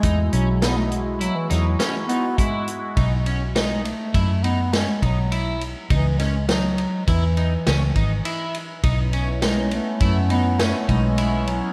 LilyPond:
<<
  \new Staff \with { instrumentName = "Clean electric guitar" } { \time 5/4 \key b \mixolydian \tempo 4 = 102 dis'8 cis'8 dis'4 e'8 dis'8 cis'8 dis'8 e'4 | dis'8 cis'8 dis'4 e'8 dis'8 cis'8 dis'8 e'4 | dis'8 cis'8 dis'4 e'8 dis'8 cis'8 dis'8 e'4 | dis'8 cis'8 dis'4 e'8 dis'8 cis'8 dis'8 e'4 | }
  \new Staff \with { instrumentName = "Analog synth pad" } { \time 5/4 \key b \mixolydian <gis e' fis'>1~ <gis e' fis'>4 | r1 r4 | r1 r4 | <b cis' e'>1~ <b cis' e'>4 | }
  \new Staff \with { instrumentName = "Bass clarinet" } { \clef bass \time 5/4 \key b \mixolydian gis8 fis8 b16 a16 gis8 fis16 e16 fis8 r8 b8 gis8 r8 | r4 gis8 a4 b8 gis8 fis4 r8 | e8 gis8 fis4 e2 r4 | r4 gis8 a8 a8 b8 a8 gis4 fis8 | }
  \new Staff \with { instrumentName = "Fingered electric bass" } { \clef bass \time 5/4 \key b \mixolydian e,8 b,,2 e,8 r2 | b,,2 fis,4. b,,4. | cis,2 e,4 cis,8 gis,,8 r4 | b,,2 fis,4. b,,4. | }
  \new DrumStaff \with { instrumentName = "Drums" } \drummode { \time 5/4 <hh bd>8 hh8 <hh sn>8 hh8 hh8 <hh sn>8 <hh sn>8 hh8 <hh bd>8 hh8 | <bd cymr>8 cymr8 <cymr sn>8 cymr8 <bd cymr>8 cymr8 <cymr sn>8 <bd cymr>8 cymr8 cymr8 | <bd cymr>8 <cymr sn>8 <cymr sn>8 cymr8 <bd cymr>8 cymr8 <cymr sn>8 <bd cymr>8 cymr8 cymr8 | <bd cymr>8 cymr8 <cymr sn>8 cymr8 <bd cymr>8 cymr8 <cymr sn>8 <bd cymr>8 cymr8 cymr8 | }
>>